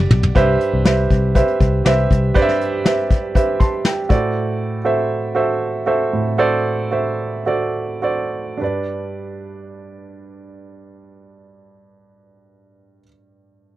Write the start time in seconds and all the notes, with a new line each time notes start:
Already playing: G3 A3 B3 D4 F#4 G4 D5
0.11 B1, mid tom
0.23 floor tom
0.35 C2 G2 G4 B4 C5 E5, kick, closed hi-hat
0.61 closed hi-hat
0.73 C2
0.85 C2 G4 B4 C5 E5, snare, closed hi-hat
1.10 C2, kick, closed hi-hat
1.35 G4 B4 C5 E5, kick, closed hi-hat
1.48 closed hi-hat
1.60 C2, kick, closed hi-hat
1.85 C2 G4 B4 C5 E5, snare, closed hi-hat
2.11 C2, kick, closed hi-hat
2.34 G2 G4 B4 C5 D5, kick, closed hi-hat
2.42 E5
2.48 snare
2.61 closed hi-hat
2.85 G4 B4 C5 E5, snare, closed hi-hat
3.10 kick, closed hi-hat
3.35 G4 B4 C5 E5, kick, closed hi-hat
3.60 A5 C6, kick, closed hi-hat
3.85 E5 G5, snare, closed hi-hat
4.09 A2 F#4 A4 C5 D5, kick, closed hi-hat
4.84 F#4 A4 C5 E5
5.35 F#4 A4 C5 E5
5.86 F#4 A4 C5 E5
6.13 A2
6.38 F#4 A4 C5 D5
6.91 F#4 A4 C5 E5
7.46 F#4 A4 C5 D5
8.02 F#4 A4 C5 D5
8.57 G2 D4 G4
8.62 B4 D5